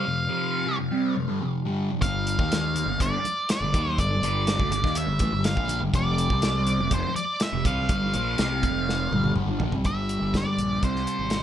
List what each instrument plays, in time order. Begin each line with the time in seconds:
Already playing: lead electric guitar F5
0.05 distorted electric guitar F2 C3
0.29 distorted electric guitar F2 C3 F3
0.66 distorted electric guitar C3 G3
0.78 distorted electric guitar F2 C3
0.92 distorted electric guitar C3 G3 C4
1.16 distorted electric guitar F2 C3
1.29 distorted electric guitar G2 D3
1.42 distorted electric guitar F2 C3
1.65 distorted electric guitar G2 D3 G3
1.90 distorted electric guitar F2 C3
2.02 fingered electric bass G1, distorted electric guitar G2 D3 G3, lead electric guitar F5, kick, closed hi-hat
2.27 closed hi-hat
2.39 fingered electric bass D#2, distorted electric guitar D#3 A#3 D#4, kick
2.52 snare, closed hi-hat
2.75 closed hi-hat, low conga
2.86 fingered electric bass G1, distorted electric guitar G2
2.90 distorted electric guitar D3
3.00 fingered electric bass G1, distorted electric guitar G2 D3, lead electric guitar D5, kick, closed hi-hat
3.25 closed hi-hat, high conga
3.49 lead electric guitar D5, snare, closed hi-hat
3.60 fingered electric bass G1, distorted electric guitar G2 D3
3.73 fingered electric bass D#2, distorted electric guitar D#3 A#3 D#4, kick, closed hi-hat, low conga
3.85 high conga
3.98 fingered electric bass G1, distorted electric guitar G2 D3, lead electric guitar D5, kick, closed hi-hat
4.10 high conga
4.22 fingered electric bass G1, distorted electric guitar G2 D3 G3, closed hi-hat
4.47 snare, closed hi-hat
4.60 fingered electric bass D2, distorted electric guitar D3 A3, kick
4.70 fingered electric bass G1, distorted electric guitar G2 D3, closed hi-hat, low conga
4.83 fingered electric bass D#2, distorted electric guitar D#3 A#3 D#4, kick, snare
4.95 lead electric guitar E5, closed hi-hat
5.07 fingered electric bass G1, distorted electric guitar G2 D3
5.19 fingered electric bass A1, distorted electric guitar A2 E3, kick, closed hi-hat, high conga
5.31 fingered electric bass G1, distorted electric guitar G2 D3
5.44 lead electric guitar F5, snare, closed hi-hat
5.56 fingered electric bass A#1, distorted electric guitar A#2 F3 A#3, kick
5.68 closed hi-hat, low conga
5.80 fingered electric bass G1, distorted electric guitar G2 D3, high conga
5.94 fingered electric bass F1, distorted electric guitar F2 C3 F3, lead electric guitar D5, kick, closed hi-hat
6.05 high conga
6.18 closed hi-hat
6.30 fingered electric bass C2, distorted electric guitar C3 G3 C4, kick
6.42 snare, closed hi-hat
6.67 closed hi-hat, low conga
6.79 fingered electric bass F1, distorted electric guitar F2 C3
6.91 fingered electric bass F1, distorted electric guitar F2 C3, lead electric guitar C5, kick, closed hi-hat
7.15 lead electric guitar D5, closed hi-hat, high conga
7.40 lead electric guitar E5, snare, closed hi-hat
7.53 fingered electric bass F1, distorted electric guitar F2 C3
7.64 fingered electric bass C2, distorted electric guitar C3 G3 C4, lead electric guitar F5, kick, closed hi-hat, low conga
7.78 high conga
7.89 fingered electric bass G1, distorted electric guitar G2 D3 G3, kick, closed hi-hat
8.03 high conga
8.14 fingered electric bass A#1, distorted electric guitar A#2 F3 A#3, closed hi-hat
8.38 fingered electric bass C2, distorted electric guitar C3 G3 C4, snare, closed hi-hat
8.63 fingered electric bass F1, distorted electric guitar F2 C3 F3, kick, closed hi-hat, high conga, low conga
8.89 snare
9.12 fingered electric bass G1, distorted electric guitar G2 D3 G3, high tom, high conga
9.24 high tom, low conga
9.36 fingered electric bass G1, distorted electric guitar G2 D3, mid tom
9.47 fingered electric bass G1, distorted electric guitar G2 D3
9.59 fingered electric bass A#1, distorted electric guitar A#2 F3, floor tom, low conga
9.71 fingered electric bass C2, distorted electric guitar C3 G3, floor tom, high conga
9.85 fingered electric bass G1, distorted electric guitar G2 D3, lead electric guitar E5, kick, closed hi-hat
9.89 distorted electric guitar G3
10.09 closed hi-hat
10.22 fingered electric bass G1
10.34 lead electric guitar D5, kick, snare, closed hi-hat
10.58 fingered electric bass A#1, closed hi-hat
10.83 fingered electric bass C2, distorted electric guitar C3 G3 C4, lead electric guitar C5, kick, closed hi-hat
10.96 snare
11.07 closed hi-hat
11.19 fingered electric bass G#1
11.30 snare, closed hi-hat